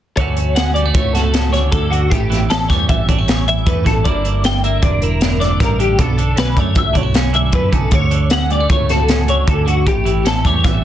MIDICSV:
0, 0, Header, 1, 5, 480
1, 0, Start_track
1, 0, Key_signature, 2, "major"
1, 0, Tempo, 387847
1, 217, Time_signature, 5, 2, 24, 8
1, 13416, End_track
2, 0, Start_track
2, 0, Title_t, "Clean electric guitar"
2, 0, Program_c, 0, 27
2, 210, Note_on_c, 0, 73, 80
2, 684, Note_on_c, 0, 78, 72
2, 693, Note_off_c, 0, 73, 0
2, 911, Note_off_c, 0, 78, 0
2, 915, Note_on_c, 0, 74, 70
2, 1158, Note_off_c, 0, 74, 0
2, 1163, Note_on_c, 0, 73, 70
2, 1399, Note_off_c, 0, 73, 0
2, 1399, Note_on_c, 0, 69, 69
2, 1884, Note_off_c, 0, 69, 0
2, 1889, Note_on_c, 0, 73, 64
2, 2120, Note_off_c, 0, 73, 0
2, 2125, Note_on_c, 0, 69, 71
2, 2356, Note_on_c, 0, 66, 64
2, 2370, Note_off_c, 0, 69, 0
2, 2600, Note_off_c, 0, 66, 0
2, 2600, Note_on_c, 0, 67, 80
2, 3088, Note_off_c, 0, 67, 0
2, 3094, Note_on_c, 0, 69, 81
2, 3324, Note_off_c, 0, 69, 0
2, 3324, Note_on_c, 0, 73, 75
2, 3569, Note_off_c, 0, 73, 0
2, 3574, Note_on_c, 0, 76, 66
2, 3820, Note_off_c, 0, 76, 0
2, 3820, Note_on_c, 0, 73, 68
2, 4297, Note_off_c, 0, 73, 0
2, 4307, Note_on_c, 0, 76, 72
2, 4538, Note_on_c, 0, 71, 70
2, 4540, Note_off_c, 0, 76, 0
2, 4772, Note_off_c, 0, 71, 0
2, 4777, Note_on_c, 0, 69, 65
2, 5005, Note_on_c, 0, 74, 83
2, 5015, Note_off_c, 0, 69, 0
2, 5489, Note_off_c, 0, 74, 0
2, 5506, Note_on_c, 0, 79, 84
2, 5736, Note_off_c, 0, 79, 0
2, 5741, Note_on_c, 0, 76, 71
2, 5977, Note_off_c, 0, 76, 0
2, 5980, Note_on_c, 0, 74, 68
2, 6214, Note_off_c, 0, 74, 0
2, 6214, Note_on_c, 0, 70, 72
2, 6686, Note_on_c, 0, 74, 72
2, 6693, Note_off_c, 0, 70, 0
2, 6929, Note_off_c, 0, 74, 0
2, 6938, Note_on_c, 0, 70, 67
2, 7173, Note_off_c, 0, 70, 0
2, 7178, Note_on_c, 0, 67, 63
2, 7410, Note_off_c, 0, 67, 0
2, 7410, Note_on_c, 0, 69, 85
2, 7890, Note_off_c, 0, 69, 0
2, 7899, Note_on_c, 0, 71, 78
2, 8145, Note_off_c, 0, 71, 0
2, 8145, Note_on_c, 0, 73, 72
2, 8377, Note_off_c, 0, 73, 0
2, 8384, Note_on_c, 0, 76, 63
2, 8617, Note_off_c, 0, 76, 0
2, 8617, Note_on_c, 0, 73, 67
2, 9089, Note_off_c, 0, 73, 0
2, 9094, Note_on_c, 0, 76, 59
2, 9331, Note_off_c, 0, 76, 0
2, 9335, Note_on_c, 0, 71, 66
2, 9569, Note_off_c, 0, 71, 0
2, 9569, Note_on_c, 0, 69, 70
2, 9817, Note_off_c, 0, 69, 0
2, 9817, Note_on_c, 0, 73, 75
2, 10294, Note_off_c, 0, 73, 0
2, 10296, Note_on_c, 0, 78, 78
2, 10533, Note_off_c, 0, 78, 0
2, 10541, Note_on_c, 0, 74, 72
2, 10770, Note_off_c, 0, 74, 0
2, 10775, Note_on_c, 0, 73, 57
2, 11013, Note_off_c, 0, 73, 0
2, 11016, Note_on_c, 0, 69, 67
2, 11493, Note_off_c, 0, 69, 0
2, 11496, Note_on_c, 0, 73, 64
2, 11734, Note_off_c, 0, 73, 0
2, 11738, Note_on_c, 0, 69, 64
2, 11967, Note_off_c, 0, 69, 0
2, 11972, Note_on_c, 0, 66, 62
2, 12210, Note_off_c, 0, 66, 0
2, 12215, Note_on_c, 0, 67, 80
2, 12694, Note_off_c, 0, 67, 0
2, 12705, Note_on_c, 0, 69, 76
2, 12942, Note_off_c, 0, 69, 0
2, 12942, Note_on_c, 0, 73, 74
2, 13166, Note_off_c, 0, 73, 0
2, 13166, Note_on_c, 0, 76, 62
2, 13399, Note_off_c, 0, 76, 0
2, 13416, End_track
3, 0, Start_track
3, 0, Title_t, "Clean electric guitar"
3, 0, Program_c, 1, 27
3, 241, Note_on_c, 1, 50, 54
3, 247, Note_on_c, 1, 57, 53
3, 256, Note_on_c, 1, 61, 53
3, 261, Note_on_c, 1, 66, 60
3, 469, Note_off_c, 1, 50, 0
3, 689, Note_off_c, 1, 61, 0
3, 694, Note_on_c, 1, 61, 50
3, 937, Note_off_c, 1, 57, 0
3, 942, Note_on_c, 1, 55, 44
3, 1058, Note_off_c, 1, 55, 0
3, 1058, Note_on_c, 1, 57, 41
3, 1167, Note_on_c, 1, 45, 61
3, 1406, Note_off_c, 1, 66, 0
3, 1421, Note_on_c, 1, 66, 54
3, 1650, Note_off_c, 1, 61, 0
3, 1665, Note_on_c, 1, 61, 52
3, 1891, Note_off_c, 1, 45, 0
3, 1894, Note_on_c, 1, 50, 54
3, 2144, Note_on_c, 1, 38, 68
3, 2364, Note_off_c, 1, 50, 0
3, 2379, Note_on_c, 1, 50, 58
3, 2590, Note_off_c, 1, 66, 0
3, 2591, Note_off_c, 1, 61, 0
3, 2617, Note_off_c, 1, 50, 0
3, 2617, Note_off_c, 1, 57, 0
3, 2620, Note_off_c, 1, 38, 0
3, 2627, Note_on_c, 1, 45, 62
3, 2846, Note_on_c, 1, 52, 59
3, 3105, Note_on_c, 1, 61, 53
3, 3340, Note_on_c, 1, 55, 49
3, 3581, Note_off_c, 1, 45, 0
3, 3583, Note_on_c, 1, 40, 57
3, 3828, Note_on_c, 1, 62, 55
3, 3943, Note_off_c, 1, 62, 0
3, 3943, Note_on_c, 1, 64, 41
3, 4046, Note_off_c, 1, 61, 0
3, 4061, Note_on_c, 1, 61, 57
3, 4310, Note_off_c, 1, 52, 0
3, 4315, Note_on_c, 1, 52, 63
3, 4528, Note_on_c, 1, 45, 67
3, 4538, Note_off_c, 1, 40, 0
3, 4753, Note_off_c, 1, 52, 0
3, 4758, Note_on_c, 1, 52, 59
3, 4988, Note_off_c, 1, 61, 0
3, 5010, Note_off_c, 1, 45, 0
3, 5016, Note_off_c, 1, 52, 0
3, 5016, Note_off_c, 1, 55, 0
3, 5016, Note_on_c, 1, 43, 64
3, 5018, Note_off_c, 1, 64, 0
3, 5021, Note_on_c, 1, 50, 58
3, 5031, Note_on_c, 1, 58, 55
3, 5038, Note_on_c, 1, 62, 51
3, 5048, Note_on_c, 1, 64, 59
3, 5240, Note_off_c, 1, 50, 0
3, 5255, Note_on_c, 1, 50, 61
3, 5501, Note_off_c, 1, 62, 0
3, 5506, Note_on_c, 1, 62, 48
3, 5728, Note_off_c, 1, 58, 0
3, 5743, Note_on_c, 1, 58, 54
3, 5951, Note_off_c, 1, 50, 0
3, 5966, Note_on_c, 1, 50, 65
3, 6225, Note_off_c, 1, 64, 0
3, 6230, Note_on_c, 1, 64, 50
3, 6471, Note_off_c, 1, 62, 0
3, 6476, Note_on_c, 1, 62, 54
3, 6680, Note_off_c, 1, 50, 0
3, 6695, Note_on_c, 1, 50, 57
3, 6932, Note_off_c, 1, 43, 0
3, 6954, Note_on_c, 1, 43, 68
3, 7156, Note_off_c, 1, 50, 0
3, 7170, Note_on_c, 1, 50, 60
3, 7387, Note_off_c, 1, 58, 0
3, 7391, Note_off_c, 1, 64, 0
3, 7393, Note_off_c, 1, 43, 0
3, 7407, Note_on_c, 1, 47, 61
3, 7636, Note_off_c, 1, 50, 0
3, 7649, Note_off_c, 1, 47, 0
3, 7650, Note_on_c, 1, 50, 58
3, 7870, Note_off_c, 1, 62, 0
3, 7874, Note_on_c, 1, 61, 47
3, 8126, Note_on_c, 1, 57, 44
3, 8353, Note_on_c, 1, 42, 56
3, 8581, Note_on_c, 1, 62, 53
3, 8702, Note_off_c, 1, 62, 0
3, 8702, Note_on_c, 1, 64, 47
3, 8842, Note_off_c, 1, 61, 0
3, 8847, Note_on_c, 1, 61, 53
3, 9058, Note_off_c, 1, 50, 0
3, 9073, Note_on_c, 1, 50, 60
3, 9321, Note_on_c, 1, 47, 54
3, 9551, Note_off_c, 1, 47, 0
3, 9556, Note_on_c, 1, 49, 61
3, 9772, Note_off_c, 1, 42, 0
3, 9791, Note_on_c, 1, 38, 61
3, 9796, Note_off_c, 1, 64, 0
3, 9802, Note_off_c, 1, 49, 0
3, 9828, Note_off_c, 1, 61, 0
3, 10022, Note_off_c, 1, 50, 0
3, 10037, Note_on_c, 1, 50, 51
3, 10293, Note_on_c, 1, 61, 49
3, 10517, Note_off_c, 1, 57, 0
3, 10522, Note_on_c, 1, 55, 50
3, 10648, Note_off_c, 1, 55, 0
3, 10648, Note_on_c, 1, 57, 43
3, 10762, Note_on_c, 1, 45, 56
3, 11019, Note_on_c, 1, 66, 51
3, 11239, Note_off_c, 1, 61, 0
3, 11254, Note_on_c, 1, 61, 52
3, 11472, Note_off_c, 1, 50, 0
3, 11486, Note_off_c, 1, 45, 0
3, 11487, Note_on_c, 1, 50, 54
3, 11708, Note_off_c, 1, 38, 0
3, 11723, Note_on_c, 1, 38, 67
3, 11939, Note_off_c, 1, 50, 0
3, 11954, Note_on_c, 1, 50, 57
3, 12185, Note_off_c, 1, 61, 0
3, 12187, Note_off_c, 1, 66, 0
3, 12203, Note_off_c, 1, 50, 0
3, 12205, Note_on_c, 1, 45, 63
3, 12208, Note_off_c, 1, 38, 0
3, 12211, Note_off_c, 1, 57, 0
3, 12442, Note_on_c, 1, 52, 57
3, 12686, Note_on_c, 1, 61, 44
3, 12942, Note_on_c, 1, 55, 51
3, 13167, Note_on_c, 1, 40, 60
3, 13171, Note_off_c, 1, 45, 0
3, 13416, Note_off_c, 1, 40, 0
3, 13416, Note_off_c, 1, 52, 0
3, 13416, Note_off_c, 1, 55, 0
3, 13416, Note_off_c, 1, 61, 0
3, 13416, End_track
4, 0, Start_track
4, 0, Title_t, "Picked electric bass"
4, 0, Program_c, 2, 34
4, 215, Note_on_c, 2, 38, 96
4, 1126, Note_off_c, 2, 38, 0
4, 1167, Note_on_c, 2, 37, 73
4, 2082, Note_off_c, 2, 37, 0
4, 2128, Note_on_c, 2, 38, 79
4, 2583, Note_off_c, 2, 38, 0
4, 2614, Note_on_c, 2, 33, 100
4, 3066, Note_off_c, 2, 33, 0
4, 3097, Note_on_c, 2, 33, 83
4, 3322, Note_off_c, 2, 33, 0
4, 3341, Note_on_c, 2, 40, 86
4, 3564, Note_off_c, 2, 40, 0
4, 3575, Note_on_c, 2, 33, 82
4, 3800, Note_off_c, 2, 33, 0
4, 3818, Note_on_c, 2, 33, 76
4, 4492, Note_off_c, 2, 33, 0
4, 4533, Note_on_c, 2, 40, 81
4, 4759, Note_off_c, 2, 40, 0
4, 4776, Note_on_c, 2, 33, 77
4, 5000, Note_off_c, 2, 33, 0
4, 5016, Note_on_c, 2, 31, 101
4, 5924, Note_off_c, 2, 31, 0
4, 5969, Note_on_c, 2, 28, 83
4, 6880, Note_off_c, 2, 28, 0
4, 6931, Note_on_c, 2, 33, 84
4, 7382, Note_off_c, 2, 33, 0
4, 7410, Note_on_c, 2, 35, 97
4, 7861, Note_off_c, 2, 35, 0
4, 7882, Note_on_c, 2, 35, 84
4, 8111, Note_off_c, 2, 35, 0
4, 8130, Note_on_c, 2, 42, 85
4, 8355, Note_off_c, 2, 42, 0
4, 8363, Note_on_c, 2, 35, 75
4, 8592, Note_off_c, 2, 35, 0
4, 8605, Note_on_c, 2, 35, 73
4, 9283, Note_off_c, 2, 35, 0
4, 9313, Note_on_c, 2, 42, 77
4, 9546, Note_off_c, 2, 42, 0
4, 9558, Note_on_c, 2, 35, 72
4, 9789, Note_off_c, 2, 35, 0
4, 9799, Note_on_c, 2, 38, 84
4, 10715, Note_off_c, 2, 38, 0
4, 10763, Note_on_c, 2, 37, 78
4, 11678, Note_off_c, 2, 37, 0
4, 11725, Note_on_c, 2, 38, 81
4, 12180, Note_off_c, 2, 38, 0
4, 12211, Note_on_c, 2, 33, 98
4, 12663, Note_off_c, 2, 33, 0
4, 12684, Note_on_c, 2, 33, 77
4, 12914, Note_off_c, 2, 33, 0
4, 12928, Note_on_c, 2, 40, 91
4, 13156, Note_off_c, 2, 40, 0
4, 13170, Note_on_c, 2, 33, 83
4, 13398, Note_off_c, 2, 33, 0
4, 13416, End_track
5, 0, Start_track
5, 0, Title_t, "Drums"
5, 210, Note_on_c, 9, 42, 79
5, 213, Note_on_c, 9, 36, 100
5, 333, Note_off_c, 9, 42, 0
5, 337, Note_off_c, 9, 36, 0
5, 454, Note_on_c, 9, 42, 59
5, 577, Note_off_c, 9, 42, 0
5, 695, Note_on_c, 9, 42, 81
5, 708, Note_on_c, 9, 38, 109
5, 819, Note_off_c, 9, 42, 0
5, 832, Note_off_c, 9, 38, 0
5, 937, Note_on_c, 9, 42, 52
5, 1061, Note_off_c, 9, 42, 0
5, 1172, Note_on_c, 9, 36, 100
5, 1174, Note_on_c, 9, 42, 80
5, 1296, Note_off_c, 9, 36, 0
5, 1298, Note_off_c, 9, 42, 0
5, 1420, Note_on_c, 9, 42, 57
5, 1434, Note_on_c, 9, 38, 33
5, 1544, Note_off_c, 9, 42, 0
5, 1558, Note_off_c, 9, 38, 0
5, 1654, Note_on_c, 9, 42, 83
5, 1668, Note_on_c, 9, 38, 107
5, 1778, Note_off_c, 9, 42, 0
5, 1792, Note_off_c, 9, 38, 0
5, 1900, Note_on_c, 9, 42, 55
5, 1914, Note_on_c, 9, 38, 30
5, 2024, Note_off_c, 9, 42, 0
5, 2037, Note_off_c, 9, 38, 0
5, 2133, Note_on_c, 9, 36, 95
5, 2133, Note_on_c, 9, 42, 74
5, 2257, Note_off_c, 9, 36, 0
5, 2257, Note_off_c, 9, 42, 0
5, 2384, Note_on_c, 9, 42, 55
5, 2508, Note_off_c, 9, 42, 0
5, 2618, Note_on_c, 9, 36, 98
5, 2626, Note_on_c, 9, 42, 70
5, 2741, Note_off_c, 9, 36, 0
5, 2750, Note_off_c, 9, 42, 0
5, 2867, Note_on_c, 9, 42, 53
5, 2881, Note_on_c, 9, 38, 30
5, 2991, Note_off_c, 9, 42, 0
5, 3004, Note_off_c, 9, 38, 0
5, 3098, Note_on_c, 9, 42, 78
5, 3111, Note_on_c, 9, 38, 104
5, 3221, Note_off_c, 9, 42, 0
5, 3235, Note_off_c, 9, 38, 0
5, 3338, Note_on_c, 9, 36, 61
5, 3342, Note_on_c, 9, 42, 50
5, 3356, Note_on_c, 9, 38, 31
5, 3462, Note_off_c, 9, 36, 0
5, 3466, Note_off_c, 9, 42, 0
5, 3479, Note_off_c, 9, 38, 0
5, 3577, Note_on_c, 9, 42, 65
5, 3580, Note_on_c, 9, 36, 101
5, 3701, Note_off_c, 9, 42, 0
5, 3703, Note_off_c, 9, 36, 0
5, 3820, Note_on_c, 9, 36, 66
5, 3825, Note_on_c, 9, 42, 58
5, 3944, Note_off_c, 9, 36, 0
5, 3949, Note_off_c, 9, 42, 0
5, 4060, Note_on_c, 9, 42, 73
5, 4074, Note_on_c, 9, 38, 107
5, 4184, Note_off_c, 9, 42, 0
5, 4198, Note_off_c, 9, 38, 0
5, 4305, Note_on_c, 9, 42, 53
5, 4429, Note_off_c, 9, 42, 0
5, 4535, Note_on_c, 9, 42, 77
5, 4537, Note_on_c, 9, 36, 98
5, 4659, Note_off_c, 9, 42, 0
5, 4661, Note_off_c, 9, 36, 0
5, 4778, Note_on_c, 9, 36, 63
5, 4779, Note_on_c, 9, 42, 53
5, 4792, Note_on_c, 9, 38, 31
5, 4901, Note_off_c, 9, 36, 0
5, 4903, Note_off_c, 9, 42, 0
5, 4916, Note_off_c, 9, 38, 0
5, 5017, Note_on_c, 9, 42, 80
5, 5018, Note_on_c, 9, 36, 98
5, 5141, Note_off_c, 9, 36, 0
5, 5141, Note_off_c, 9, 42, 0
5, 5259, Note_on_c, 9, 42, 57
5, 5382, Note_off_c, 9, 42, 0
5, 5494, Note_on_c, 9, 42, 85
5, 5507, Note_on_c, 9, 38, 99
5, 5618, Note_off_c, 9, 42, 0
5, 5631, Note_off_c, 9, 38, 0
5, 5740, Note_on_c, 9, 42, 58
5, 5864, Note_off_c, 9, 42, 0
5, 5971, Note_on_c, 9, 42, 75
5, 5973, Note_on_c, 9, 36, 98
5, 6095, Note_off_c, 9, 42, 0
5, 6097, Note_off_c, 9, 36, 0
5, 6211, Note_on_c, 9, 42, 55
5, 6335, Note_off_c, 9, 42, 0
5, 6447, Note_on_c, 9, 42, 73
5, 6460, Note_on_c, 9, 38, 104
5, 6570, Note_off_c, 9, 42, 0
5, 6584, Note_off_c, 9, 38, 0
5, 6700, Note_on_c, 9, 42, 57
5, 6713, Note_on_c, 9, 38, 31
5, 6824, Note_off_c, 9, 42, 0
5, 6837, Note_off_c, 9, 38, 0
5, 6934, Note_on_c, 9, 36, 90
5, 6937, Note_on_c, 9, 42, 76
5, 6951, Note_on_c, 9, 38, 29
5, 7057, Note_off_c, 9, 36, 0
5, 7061, Note_off_c, 9, 42, 0
5, 7075, Note_off_c, 9, 38, 0
5, 7177, Note_on_c, 9, 42, 51
5, 7300, Note_off_c, 9, 42, 0
5, 7410, Note_on_c, 9, 36, 96
5, 7412, Note_on_c, 9, 42, 71
5, 7534, Note_off_c, 9, 36, 0
5, 7536, Note_off_c, 9, 42, 0
5, 7650, Note_on_c, 9, 42, 53
5, 7774, Note_off_c, 9, 42, 0
5, 7886, Note_on_c, 9, 42, 73
5, 7900, Note_on_c, 9, 38, 106
5, 8010, Note_off_c, 9, 42, 0
5, 8024, Note_off_c, 9, 38, 0
5, 8127, Note_on_c, 9, 36, 57
5, 8133, Note_on_c, 9, 42, 48
5, 8251, Note_off_c, 9, 36, 0
5, 8256, Note_off_c, 9, 42, 0
5, 8357, Note_on_c, 9, 42, 74
5, 8364, Note_on_c, 9, 36, 96
5, 8481, Note_off_c, 9, 42, 0
5, 8488, Note_off_c, 9, 36, 0
5, 8604, Note_on_c, 9, 36, 64
5, 8605, Note_on_c, 9, 42, 49
5, 8728, Note_off_c, 9, 36, 0
5, 8729, Note_off_c, 9, 42, 0
5, 8840, Note_on_c, 9, 42, 75
5, 8854, Note_on_c, 9, 38, 101
5, 8964, Note_off_c, 9, 42, 0
5, 8978, Note_off_c, 9, 38, 0
5, 9080, Note_on_c, 9, 42, 51
5, 9204, Note_off_c, 9, 42, 0
5, 9312, Note_on_c, 9, 42, 76
5, 9320, Note_on_c, 9, 36, 100
5, 9436, Note_off_c, 9, 42, 0
5, 9444, Note_off_c, 9, 36, 0
5, 9561, Note_on_c, 9, 36, 61
5, 9563, Note_on_c, 9, 42, 57
5, 9685, Note_off_c, 9, 36, 0
5, 9687, Note_off_c, 9, 42, 0
5, 9791, Note_on_c, 9, 42, 81
5, 9799, Note_on_c, 9, 36, 96
5, 9914, Note_off_c, 9, 42, 0
5, 9923, Note_off_c, 9, 36, 0
5, 10040, Note_on_c, 9, 42, 58
5, 10164, Note_off_c, 9, 42, 0
5, 10272, Note_on_c, 9, 42, 83
5, 10286, Note_on_c, 9, 38, 102
5, 10396, Note_off_c, 9, 42, 0
5, 10409, Note_off_c, 9, 38, 0
5, 10523, Note_on_c, 9, 42, 55
5, 10647, Note_off_c, 9, 42, 0
5, 10763, Note_on_c, 9, 42, 73
5, 10764, Note_on_c, 9, 36, 92
5, 10887, Note_off_c, 9, 42, 0
5, 10888, Note_off_c, 9, 36, 0
5, 11006, Note_on_c, 9, 42, 57
5, 11019, Note_on_c, 9, 38, 29
5, 11129, Note_off_c, 9, 42, 0
5, 11143, Note_off_c, 9, 38, 0
5, 11243, Note_on_c, 9, 42, 74
5, 11257, Note_on_c, 9, 38, 101
5, 11367, Note_off_c, 9, 42, 0
5, 11381, Note_off_c, 9, 38, 0
5, 11488, Note_on_c, 9, 42, 56
5, 11611, Note_off_c, 9, 42, 0
5, 11727, Note_on_c, 9, 36, 95
5, 11732, Note_on_c, 9, 42, 69
5, 11851, Note_off_c, 9, 36, 0
5, 11855, Note_off_c, 9, 42, 0
5, 11975, Note_on_c, 9, 42, 55
5, 12098, Note_off_c, 9, 42, 0
5, 12210, Note_on_c, 9, 36, 97
5, 12210, Note_on_c, 9, 42, 75
5, 12334, Note_off_c, 9, 36, 0
5, 12334, Note_off_c, 9, 42, 0
5, 12454, Note_on_c, 9, 42, 48
5, 12578, Note_off_c, 9, 42, 0
5, 12693, Note_on_c, 9, 42, 75
5, 12706, Note_on_c, 9, 38, 100
5, 12816, Note_off_c, 9, 42, 0
5, 12830, Note_off_c, 9, 38, 0
5, 12930, Note_on_c, 9, 36, 59
5, 12932, Note_on_c, 9, 42, 49
5, 13054, Note_off_c, 9, 36, 0
5, 13056, Note_off_c, 9, 42, 0
5, 13173, Note_on_c, 9, 36, 94
5, 13174, Note_on_c, 9, 42, 73
5, 13187, Note_on_c, 9, 38, 33
5, 13297, Note_off_c, 9, 36, 0
5, 13297, Note_off_c, 9, 42, 0
5, 13311, Note_off_c, 9, 38, 0
5, 13416, End_track
0, 0, End_of_file